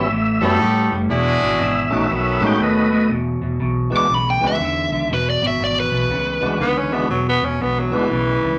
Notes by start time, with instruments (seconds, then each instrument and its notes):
Already playing: tonewheel organ E5
0.09 fingered electric bass A1, clean electric guitar A2 E3
0.41 fingered electric bass F#2, clean electric guitar A2 F#3, tonewheel organ G3 B3 C#4 E4, horn section A3 B3 C#4 G4 A4
0.59 clean electric guitar A2 G3, fingered electric bass A2
0.91 fingered electric bass F#1, clean electric guitar A2 G3
1.09 fingered electric bass E1, clean electric guitar E2 B2, horn section G#3 D4 E4 F#4 G#4
1.42 fingered electric bass G#1, clean electric guitar E2 B2
1.59 fingered electric bass G#1, clean electric guitar E2 B2, tonewheel organ D#5
1.63 tonewheel organ E5
1.91 fingered electric bass A#1, clean electric guitar E2 B2, tonewheel organ A3 C#4 D#4 F#4
1.97 tonewheel organ E5
2.09 fingered electric bass B1, clean electric guitar B2 F#3, horn section D#3 B3 C#4 A4 B4
2.40 fingered electric bass A2, clean electric guitar B2 G#3, tonewheel organ A3 C#4 D#4 F#4
2.47 tonewheel organ G5
2.59 fingered electric bass D#2, clean electric guitar B2 A3, tonewheel organ B4
2.63 tonewheel organ D#5
2.91 clean electric guitar B2 A3
3.09 fingered electric bass E1, clean electric guitar E2 B2
3.41 fingered electric bass E1, clean electric guitar E2 B2
3.60 fingered electric bass B1, clean electric guitar E2 B2
3.90 fingered electric bass D2, clean electric guitar E2 B2, tonewheel organ E3 G#3 B3 D4 F#4
3.97 overdriven electric guitar D6
4.09 fingered electric bass B1, clean electric guitar E2 C#3
4.14 overdriven electric guitar B5
4.30 overdriven electric guitar G5
4.41 fingered electric bass C#2, clean electric guitar E2 C#3, tonewheel organ E3 G#3 B3 D4 F#4
4.47 overdriven electric guitar E5
4.59 fingered electric bass E2, clean electric guitar E2 D3
4.91 fingered electric bass C#2, clean electric guitar E2 D3
5.10 fingered electric bass E1, clean electric guitar E2 B2
5.14 overdriven electric guitar B4
5.30 overdriven electric guitar D5
5.42 fingered electric bass G#1, clean electric guitar E2 B2
5.47 overdriven electric guitar E5
5.60 fingered electric bass G#1, clean electric guitar E2 B2
5.64 overdriven electric guitar D5
5.80 overdriven electric guitar B4
5.91 fingered electric bass B1, clean electric guitar E2 B2
6.09 fingered electric bass C#2, clean electric guitar E2 C#3
6.41 fingered electric bass D2, clean electric guitar E2 C#3, tonewheel organ E3 G#3 B3 D4 F#4
6.59 fingered electric bass C#2, clean electric guitar E2 D3, tenor saxophone B3
6.78 tenor saxophone C#4
6.91 clean electric guitar E2 D3, tonewheel organ E3 G#3 B3 D4 F#4, tenor saxophone B3
7.10 fingered electric bass E1, clean electric guitar E2 B2, tenor saxophone F#3
7.28 tenor saxophone B3
7.42 fingered electric bass E1, clean electric guitar E2 B2, tenor saxophone C#4
7.60 fingered electric bass B1, clean electric guitar E2 B2, tenor saxophone B3
7.79 tenor saxophone F#3
7.91 fingered electric bass D2, clean electric guitar E2 B2, tonewheel organ E3 G#3 B3 D4 F#4, tenor saxophone E3
8.10 fingered electric bass B1, clean electric guitar E2 C#3
8.43 fingered electric bass C#2, clean electric guitar E2 C#3